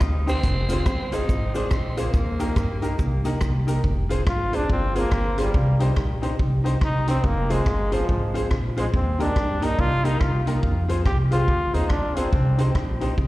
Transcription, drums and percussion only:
0.00 kick, cross-stick, cabasa
0.27 open hi-hat, cabasa
0.43 kick, hi-hat pedal, cabasa
0.69 closed hi-hat, cabasa
0.86 kick, cross-stick, cabasa
1.12 closed hi-hat, cabasa
1.29 kick, cabasa
1.55 closed hi-hat, cabasa
1.71 kick, cross-stick, cabasa
1.97 closed hi-hat, cabasa
2.14 kick, cabasa
2.40 closed hi-hat, cabasa
2.56 kick, cross-stick, cabasa
2.82 closed hi-hat, cabasa
2.99 kick, cabasa
3.25 closed hi-hat, cabasa
3.41 kick, cross-stick, cabasa
3.68 closed hi-hat, cabasa
3.84 kick
4.10 closed hi-hat
4.27 kick, cross-stick
4.53 closed hi-hat
4.70 kick
4.95 closed hi-hat
5.11 kick, cross-stick
5.38 cross-stick, closed hi-hat
5.54 kick
5.80 closed hi-hat
5.96 kick, cross-stick
6.23 closed hi-hat
6.39 kick
6.66 closed hi-hat
6.81 kick, cross-stick
7.08 cross-stick, closed hi-hat
7.24 kick
7.50 closed hi-hat
7.66 kick, cross-stick
7.92 closed hi-hat
8.09 kick
8.35 closed hi-hat
8.51 kick, cross-stick
8.77 closed hi-hat
8.94 kick
9.20 closed hi-hat
9.36 kick, cross-stick
9.62 closed hi-hat
9.79 kick
10.05 closed hi-hat
10.21 kick, cross-stick
10.47 closed hi-hat
10.63 kick
10.89 closed hi-hat
11.06 kick, cross-stick
11.32 closed hi-hat
11.48 kick
11.74 closed hi-hat
11.90 kick, cross-stick
12.16 closed hi-hat
12.33 kick
12.58 closed hi-hat
12.75 kick, cross-stick
13.01 closed hi-hat
13.18 kick

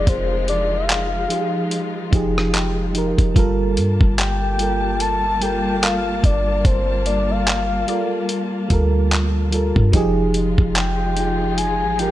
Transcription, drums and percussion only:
0.07 kick, closed hi-hat
0.48 closed hi-hat
0.89 clap, closed hi-hat
1.30 closed hi-hat
1.71 closed hi-hat
2.13 kick, closed hi-hat
2.38 cross-stick
2.54 clap, closed hi-hat
2.95 closed hi-hat
3.18 kick, closed hi-hat
3.36 kick, closed hi-hat
3.77 closed hi-hat
4.01 kick
4.18 clap, closed hi-hat
4.59 closed hi-hat
5.00 closed hi-hat
5.42 closed hi-hat
5.83 clap, closed hi-hat
6.24 kick, closed hi-hat
6.65 kick, closed hi-hat
7.06 closed hi-hat
7.47 clap, closed hi-hat
7.88 closed hi-hat
8.29 closed hi-hat
8.70 kick, closed hi-hat
9.11 clap, closed hi-hat
9.52 closed hi-hat
9.76 kick
9.93 kick, closed hi-hat
10.34 closed hi-hat
10.58 kick
10.75 clap, closed hi-hat
11.17 closed hi-hat
11.58 closed hi-hat
11.99 closed hi-hat

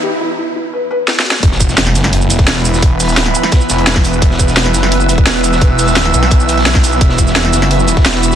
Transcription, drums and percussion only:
1.08 snare
1.20 snare
1.31 snare
1.43 kick, closed hi-hat
1.52 snare
1.60 kick, closed hi-hat, shaker
1.69 snare, shaker
1.78 snare, closed hi-hat
1.87 snare
1.95 snare, closed hi-hat, shaker
2.04 snare, closed hi-hat
2.13 closed hi-hat
2.22 shaker
2.30 closed hi-hat, shaker
2.39 kick, snare, closed hi-hat
2.47 snare, closed hi-hat
2.56 snare
2.65 closed hi-hat, open hi-hat, shaker
2.74 snare, shaker
2.82 kick, closed hi-hat
3.00 closed hi-hat, open hi-hat, shaker
3.09 shaker
3.17 snare, closed hi-hat
3.26 snare
3.35 closed hi-hat, shaker
3.43 snare, closed hi-hat
3.52 kick, snare, closed hi-hat
3.61 shaker
3.70 snare, closed hi-hat, shaker
3.78 closed hi-hat
3.87 snare, closed hi-hat
3.96 kick, snare, closed hi-hat
4.05 closed hi-hat, open hi-hat, shaker
4.13 shaker
4.22 kick, closed hi-hat
4.31 snare
4.39 kick, closed hi-hat, shaker
4.48 snare, shaker
4.57 snare, closed hi-hat
4.66 snare
4.74 snare, closed hi-hat, shaker
4.83 snare, closed hi-hat
4.92 closed hi-hat
5.01 shaker
5.09 closed hi-hat, shaker
5.18 kick, closed hi-hat
5.26 snare, closed hi-hat
5.36 closed hi-hat
5.44 closed hi-hat, open hi-hat, shaker
5.52 snare, shaker
5.61 kick, closed hi-hat
5.79 closed hi-hat, open hi-hat, shaker
5.88 shaker
5.95 snare, closed hi-hat
6.05 snare
6.14 closed hi-hat, shaker
6.23 snare, closed hi-hat
6.31 kick, closed hi-hat
6.40 shaker
6.49 closed hi-hat, shaker
6.58 snare, closed hi-hat
6.66 snare, closed hi-hat
6.75 kick, snare, closed hi-hat
6.84 closed hi-hat, open hi-hat, shaker
6.92 shaker
7.01 kick, closed hi-hat
7.09 snare
7.18 kick, closed hi-hat, shaker
7.27 snare, shaker
7.35 snare, closed hi-hat
7.45 snare
7.53 snare, closed hi-hat, shaker
7.62 snare, closed hi-hat
7.71 closed hi-hat
7.80 shaker
7.88 closed hi-hat, shaker
7.97 kick, snare, closed hi-hat
8.05 snare, closed hi-hat
8.15 snare
8.23 closed hi-hat, open hi-hat, shaker
8.32 snare, shaker

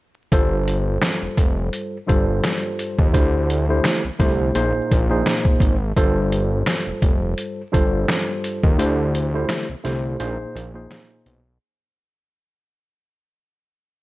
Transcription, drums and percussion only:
0.32 kick, closed hi-hat
0.68 closed hi-hat
1.02 snare, closed hi-hat
1.37 kick, closed hi-hat
1.73 closed hi-hat
2.09 kick, closed hi-hat
2.44 snare, closed hi-hat
2.79 closed hi-hat
2.99 kick
3.14 kick, closed hi-hat
3.50 closed hi-hat
3.84 snare, closed hi-hat
4.20 kick, snare, closed hi-hat
4.55 closed hi-hat
4.92 kick, closed hi-hat
5.26 snare, closed hi-hat
5.45 kick
5.60 kick, closed hi-hat
5.97 kick, closed hi-hat
6.32 closed hi-hat
6.66 snare, closed hi-hat
7.02 kick, closed hi-hat
7.38 closed hi-hat
7.74 kick, closed hi-hat
8.08 snare, closed hi-hat
8.44 closed hi-hat
8.63 kick
8.79 closed hi-hat
9.15 closed hi-hat
9.49 snare, closed hi-hat
9.85 snare, closed hi-hat
10.20 closed hi-hat
10.56 closed hi-hat
10.91 snare, closed hi-hat
11.26 closed hi-hat

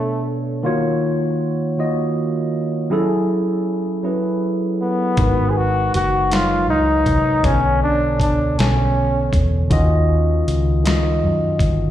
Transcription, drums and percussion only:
5.17 kick, closed hi-hat
5.94 closed hi-hat
6.32 snare, closed hi-hat
7.06 kick, closed hi-hat
7.44 kick, closed hi-hat
8.20 kick, closed hi-hat
8.59 snare, closed hi-hat
9.33 kick, closed hi-hat
9.71 kick, closed hi-hat
10.48 closed hi-hat
10.86 snare, closed hi-hat
11.59 kick, closed hi-hat

